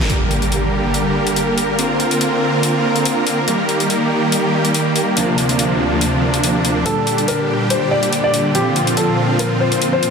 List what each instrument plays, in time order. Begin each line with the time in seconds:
0.10 supersaw synth D3 G3 A#3 G4 A#4, closed hi-hat, impact
0.31 closed hi-hat
0.42 closed hi-hat
0.52 closed hi-hat
0.94 closed hi-hat
1.27 closed hi-hat
1.36 closed hi-hat
1.58 closed hi-hat
1.79 supersaw synth D3 C4 F4, closed hi-hat
2.00 closed hi-hat
2.11 closed hi-hat
2.21 closed hi-hat
2.63 closed hi-hat
2.96 closed hi-hat
3.05 closed hi-hat
3.27 closed hi-hat
3.48 supersaw synth D#3 G3 G4, closed hi-hat
3.69 closed hi-hat
3.80 closed hi-hat
3.90 closed hi-hat
4.32 closed hi-hat
4.65 closed hi-hat
4.74 closed hi-hat
4.96 closed hi-hat
5.17 supersaw synth D2 C3 F3 D4, closed hi-hat
5.38 closed hi-hat
5.49 closed hi-hat
5.59 closed hi-hat
6.01 closed hi-hat
6.34 closed hi-hat
6.44 closed hi-hat
6.65 closed hi-hat
6.86 supersaw synth A#2 D3 G3 G4, felt piano A4, closed hi-hat
7.07 closed hi-hat
7.18 closed hi-hat
7.28 felt piano A#4, closed hi-hat
7.70 felt piano C5, closed hi-hat
7.91 felt piano D5
8.03 closed hi-hat
8.13 closed hi-hat
8.24 felt piano D5
8.34 closed hi-hat
8.55 supersaw synth F3 C4 F4, felt piano G4, closed hi-hat
8.76 closed hi-hat
8.87 closed hi-hat
8.97 felt piano A4, closed hi-hat
9.39 felt piano A#4, closed hi-hat
9.60 felt piano C5
9.72 closed hi-hat
9.82 closed hi-hat
9.93 felt piano C5
10.03 closed hi-hat